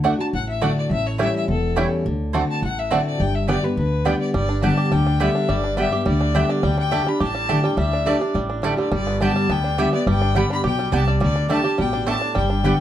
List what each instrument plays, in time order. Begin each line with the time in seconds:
Already playing: upright bass D2
0.04 steel-string acoustic guitar D3 A3 D4 F#4, mandolin A3 F#4 D5 F#5, five-string banjo A3 D4
0.19 steel-string acoustic guitar D4 F#4, fiddle A5
0.33 upright bass A1, steel-string acoustic guitar A2, fiddle F#5
0.49 fiddle E5
0.61 steel-string acoustic guitar D3 A3 D4 F#4, mandolin A3 F#4 D5 F#5, five-string banjo A3 D4, fiddle D5
0.78 fiddle D5
0.90 upright bass A1, steel-string acoustic guitar A2, fiddle E5
1.06 fiddle C#5
1.18 steel-string acoustic guitar E3 G3 C#4 E4, five-string banjo G3 C#4 E4, mandolin A3 E4 C#5 G5, fiddle E5
1.35 fiddle E5
1.48 upright bass E1, steel-string acoustic guitar E2, fiddle A4
1.76 steel-string acoustic guitar E3 G3 C#4 E4, five-string banjo G3 C#4 E4, mandolin A3 E4 C#5 G5
2.06 upright bass D2, steel-string acoustic guitar D3
2.33 steel-string acoustic guitar D3 A3 C4 F#4, five-string banjo A3 C4 D4, mandolin C4 F#4 D5 A5
2.50 fiddle A5
2.62 upright bass A1, steel-string acoustic guitar A2, fiddle F#5
2.79 fiddle E5
2.91 steel-string acoustic guitar D3 A3 C4 F#4, five-string banjo A3 C4 D4, mandolin C4 F#4 D5 A5, fiddle D5
3.06 fiddle D5
3.20 upright bass G1, steel-string acoustic guitar G2, fiddle G5
3.35 fiddle E5
3.48 steel-string acoustic guitar D3 G3 B3 G4, five-string banjo G3 B3 D4, mandolin B3 G4 D5 G5, fiddle D5
3.63 steel-string acoustic guitar B3 G4, fiddle B4
3.77 upright bass D2, steel-string acoustic guitar D3, fiddle B4
4.05 steel-string acoustic guitar D3 G3 B3 G4, five-string banjo G3 B3 D4, mandolin B3 G4 D5 G5
4.20 fiddle D5
4.34 upright bass G1, steel-string acoustic guitar G2, five-string banjo G3, fiddle D5
4.49 five-string banjo D4
4.62 steel-string acoustic guitar D3 G3 B3 G4, five-string banjo G3, mandolin B3 G4 D5 G5, fiddle A5
4.77 five-string banjo G4
4.91 upright bass D2, steel-string acoustic guitar D3, five-string banjo G3, fiddle G5
5.07 five-string banjo D4
5.20 steel-string acoustic guitar D3 G3 B3 G4, five-string banjo D3, mandolin B3 G4 D5 G5, fiddle E5
5.35 five-string banjo D4
5.49 upright bass G1, steel-string acoustic guitar G2, five-string banjo G3, fiddle D5
5.64 five-string banjo D4
5.77 steel-string acoustic guitar D3 G3 B3 G4, five-string banjo G3, mandolin B3 G4 D5 G5, fiddle E5
5.92 steel-string acoustic guitar B3 G4, five-string banjo G4
6.05 upright bass D2, steel-string acoustic guitar D3, five-string banjo G3, fiddle D5
6.21 five-string banjo D4
6.34 steel-string acoustic guitar D3 G3 B3 G4, five-string banjo D3, mandolin B3 G4 D5 G5, fiddle E5
6.49 five-string banjo D4, fiddle D5
6.63 upright bass D2, steel-string acoustic guitar D3, five-string banjo G3, fiddle G5
6.78 five-string banjo D4, fiddle G5
6.91 steel-string acoustic guitar D3 A3 D4 G4, five-string banjo G3, mandolin A3 G4 D5 A5
7.07 five-string banjo D4, steel-string acoustic guitar D4 G4, fiddle B5
7.20 upright bass A1, steel-string acoustic guitar A2, five-string banjo G4, fiddle A5
7.35 five-string banjo G3
7.49 steel-string acoustic guitar D3 A3 D4 G4, mandolin A3 G4 D5 A5, five-string banjo D4
7.63 five-string banjo G3, steel-string acoustic guitar D4 G4, fiddle G5
7.77 upright bass D2, steel-string acoustic guitar D3, five-string banjo G3, fiddle E5
7.93 five-string banjo D4
8.05 steel-string acoustic guitar D3 A3 D4 G4, five-string banjo G3, mandolin A3 G4 D5 A5, fiddle D5
8.20 five-string banjo D4, steel-string acoustic guitar D4 G4
8.35 upright bass A1, steel-string acoustic guitar A2, five-string banjo G3
8.50 five-string banjo D4
8.62 steel-string acoustic guitar D3 A3 D4 G4, five-string banjo G3, mandolin A3 G4 D5 A5
8.77 five-string banjo D3, steel-string acoustic guitar D4 G4, fiddle D5
8.92 upright bass G1, steel-string acoustic guitar G2, five-string banjo G3, fiddle D5
9.07 five-string banjo B3
9.20 steel-string acoustic guitar D3 G3 B3 G4, mandolin B3 G4 D5 G5, five-string banjo D4, fiddle A5
9.36 five-string banjo G3
9.49 upright bass D2, steel-string acoustic guitar D3, five-string banjo B3, fiddle G5
9.64 five-string banjo D4
9.78 steel-string acoustic guitar D3 G3 B3 G4, mandolin B3 G4 D5 G5, five-string banjo G4, fiddle E5
9.93 five-string banjo B3, steel-string acoustic guitar B3 G4, fiddle D5
10.07 upright bass G1, steel-string acoustic guitar G2, five-string banjo G3, fiddle G5
10.22 five-string banjo D4
10.35 steel-string acoustic guitar D3 G3 B3 G4, five-string banjo G3, mandolin B3 G4 D5 G5, fiddle B5
10.50 five-string banjo D4, fiddle B5
10.64 upright bass B1, steel-string acoustic guitar B2, five-string banjo G4, fiddle G5
10.79 five-string banjo G3
10.92 upright bass C2, steel-string acoustic guitar C3, mandolin B3 G4 D5 G5, five-string banjo D4, fiddle A5
11.08 five-string banjo G3, fiddle D5
11.20 upright bass D2, steel-string acoustic guitar D3, five-string banjo G3, fiddle D5
11.36 five-string banjo D4
11.48 steel-string acoustic guitar D3 A3 D4 G4, five-string banjo G3, mandolin A3 G4 D5 A5, fiddle A5
11.63 steel-string acoustic guitar D4 G4, five-string banjo G4
11.78 upright bass A1, steel-string acoustic guitar B2, five-string banjo G3, fiddle G5
11.93 five-string banjo D4
12.06 steel-string acoustic guitar A2, five-string banjo D3, mandolin A3 G4 D5 A5, fiddle A5
12.21 five-string banjo D4
12.35 upright bass G1, steel-string acoustic guitar G2, five-string banjo G3, fiddle G5
12.50 five-string banjo D4
12.63 steel-string acoustic guitar D3 G3 B3 G4, five-string banjo G3, mandolin B3 G4 D5 G5